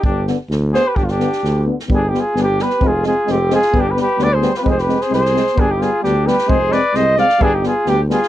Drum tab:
SD |--o-o-o-|-oooo--o|--o-o-oo|--o-o-oo|
BD |o-------|o-------|o-------|o-------|

SD |--o-o-oo|-ooooooo|--o-o-oo|--o-o-oo|
BD |o-------|o-------|o-------|o-------|

SD |--o-o-oo|
BD |o-------|